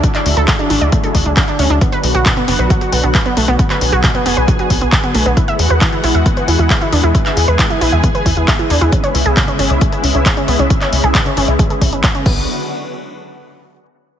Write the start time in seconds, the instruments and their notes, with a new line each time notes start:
Already playing: analog synth pad D3 F#3 E4
0.04 analog synth pad G#3, synth arpeggio sound D4, kick, closed hi-hat
0.15 synth arpeggio sound D5, clap, closed hi-hat
0.26 analog synth bass D2, open hi-hat
0.37 analog synth bass D2, synth arpeggio sound A4, closed hi-hat
0.48 synth arpeggio sound D3, kick, clap, closed hi-hat
0.59 synth arpeggio sound D4, closed hi-hat
0.70 analog synth bass A1, synth arpeggio sound D4, open hi-hat
0.81 analog synth bass D2, synth arpeggio sound D5, closed hi-hat
0.92 synth arpeggio sound A3, kick, closed hi-hat
1.04 synth arpeggio sound A4, closed hi-hat
1.15 analog synth bass D2, synth arpeggio sound D4, kick, open hi-hat
1.26 analog synth bass D2, synth arpeggio sound D4, closed hi-hat
1.37 synth arpeggio sound D5, kick, clap, closed hi-hat
1.48 synth arpeggio sound D4, closed hi-hat
1.59 analog synth bass D2, synth arpeggio sound C#4, open hi-hat
1.70 analog synth bass D2, synth arpeggio sound D4, closed hi-hat
1.81 analog synth pad F#3 B3 F#4, synth arpeggio sound B3, kick, closed hi-hat
1.92 synth arpeggio sound B4, closed hi-hat
2.03 analog synth bass B1, open hi-hat
2.14 analog synth bass B1, synth arpeggio sound F#4, closed hi-hat
2.26 synth arpeggio sound B2, kick, clap, closed hi-hat
2.37 synth arpeggio sound B3, closed hi-hat
2.48 analog synth bass F#1, synth arpeggio sound B3, open hi-hat
2.59 analog synth bass B1, synth arpeggio sound B4, closed hi-hat
2.70 synth arpeggio sound F#3, kick, closed hi-hat
2.81 synth arpeggio sound F#4, closed hi-hat
2.92 analog synth bass B1, synth arpeggio sound B3, open hi-hat
3.03 analog synth bass B1, synth arpeggio sound B3, closed hi-hat
3.15 synth arpeggio sound B4, kick, clap, closed hi-hat
3.26 synth arpeggio sound B3, closed hi-hat
3.37 analog synth bass B1, synth arpeggio sound A3, open hi-hat
3.48 analog synth bass B1, synth arpeggio sound B3, closed hi-hat
3.59 synth arpeggio sound B3, analog synth pad G#4, kick, closed hi-hat
3.70 synth arpeggio sound B4, clap, closed hi-hat
3.81 analog synth bass B1, open hi-hat
3.92 analog synth bass B1, synth arpeggio sound F#4, closed hi-hat
4.04 synth arpeggio sound B2, kick, clap, closed hi-hat
4.15 synth arpeggio sound B3, closed hi-hat
4.26 analog synth bass F#1, synth arpeggio sound B3, open hi-hat
4.37 analog synth bass B1, synth arpeggio sound B4, closed hi-hat
4.48 synth arpeggio sound F#3, kick, closed hi-hat
4.59 synth arpeggio sound F#4, closed hi-hat
4.70 analog synth bass B1, synth arpeggio sound B3, kick, open hi-hat
4.81 analog synth bass B1, synth arpeggio sound B3, closed hi-hat
4.92 synth arpeggio sound B4, kick, clap, closed hi-hat
5.04 synth arpeggio sound B3, closed hi-hat
5.15 analog synth bass B1, synth arpeggio sound A3, open hi-hat
5.26 analog synth bass B1, synth arpeggio sound B3, closed hi-hat
5.37 analog synth pad E3 G#3 F#4, synth arpeggio sound E4, kick, closed hi-hat
5.48 synth arpeggio sound E5, closed hi-hat
5.59 analog synth bass E2, open hi-hat
5.70 analog synth bass E2, synth arpeggio sound B4, closed hi-hat
5.81 synth arpeggio sound E3, kick, clap, closed hi-hat
5.93 synth arpeggio sound E4, closed hi-hat
6.04 analog synth bass B1, synth arpeggio sound E4, open hi-hat
6.15 analog synth bass E2, synth arpeggio sound E5, closed hi-hat
6.26 synth arpeggio sound B3, kick, closed hi-hat
6.37 synth arpeggio sound B4, closed hi-hat
6.48 analog synth bass E2, synth arpeggio sound E4, open hi-hat
6.59 analog synth bass E2, synth arpeggio sound E4, closed hi-hat
6.70 synth arpeggio sound E5, kick, clap, closed hi-hat
6.81 synth arpeggio sound E4, closed hi-hat
6.92 analog synth bass E2, synth arpeggio sound D4, open hi-hat
7.04 analog synth bass E2, synth arpeggio sound E4, closed hi-hat
7.15 synth arpeggio sound E4, analog synth pad G#4, kick, closed hi-hat
7.26 synth arpeggio sound E5, clap, closed hi-hat
7.37 analog synth bass E2, open hi-hat
7.48 analog synth bass E2, synth arpeggio sound B4, closed hi-hat
7.59 synth arpeggio sound E3, kick, clap, closed hi-hat
7.70 synth arpeggio sound E4, closed hi-hat
7.81 analog synth bass B1, synth arpeggio sound E4, open hi-hat
7.92 analog synth bass E2, synth arpeggio sound E5
8.04 synth arpeggio sound B3, kick, closed hi-hat
8.15 synth arpeggio sound B4, closed hi-hat
8.26 analog synth bass E2, synth arpeggio sound E4, kick, open hi-hat
8.37 analog synth bass E2, synth arpeggio sound E4, closed hi-hat
8.48 synth arpeggio sound E5, kick, clap, closed hi-hat
8.59 synth arpeggio sound E4, closed hi-hat
8.70 analog synth bass E2, synth arpeggio sound D4, open hi-hat
8.81 analog synth bass E2, synth arpeggio sound E4, closed hi-hat
8.92 analog synth pad C#3 G#3 E4, synth arpeggio sound C#4, kick, closed hi-hat
9.04 synth arpeggio sound C#5, closed hi-hat
9.15 analog synth bass C#2, open hi-hat
9.26 analog synth bass C#2, synth arpeggio sound G#4, closed hi-hat
9.37 synth arpeggio sound C#3, kick, clap, closed hi-hat
9.48 synth arpeggio sound C#4, closed hi-hat
9.59 analog synth bass G#1, synth arpeggio sound C#4, open hi-hat
9.70 analog synth bass C#2, synth arpeggio sound C#5, closed hi-hat
9.81 synth arpeggio sound G#3, kick, closed hi-hat
9.92 synth arpeggio sound G#4, closed hi-hat
10.04 analog synth bass C#2, synth arpeggio sound C#4, open hi-hat
10.15 analog synth bass C#2, synth arpeggio sound C#4, closed hi-hat
10.26 synth arpeggio sound C#5, kick, clap, closed hi-hat
10.37 synth arpeggio sound C#4, closed hi-hat
10.48 analog synth bass C#2, synth arpeggio sound B3, open hi-hat
10.59 analog synth bass C#2, synth arpeggio sound C#4, closed hi-hat
10.70 synth arpeggio sound C#4, kick, closed hi-hat
10.81 synth arpeggio sound C#5, clap, closed hi-hat
10.92 analog synth bass C#2, open hi-hat
11.04 analog synth bass C#2, synth arpeggio sound G#4
11.15 synth arpeggio sound C#3, kick, clap, closed hi-hat
11.26 synth arpeggio sound C#4, closed hi-hat
11.37 analog synth bass G#1, synth arpeggio sound C#4, open hi-hat
11.48 analog synth bass C#2, synth arpeggio sound C#5, closed hi-hat
11.59 synth arpeggio sound G#3, kick, closed hi-hat
11.70 synth arpeggio sound G#4, closed hi-hat
11.81 analog synth bass C#2, synth arpeggio sound C#4, kick, open hi-hat
11.92 analog synth bass G#1, synth arpeggio sound C#4, closed hi-hat
12.04 synth arpeggio sound C#5, kick, clap, closed hi-hat
12.15 synth arpeggio sound C#4, closed hi-hat
12.26 analog synth bass B1, analog synth pad D3 F#3 B3 F#4, synth arpeggio sound B3, kick, crash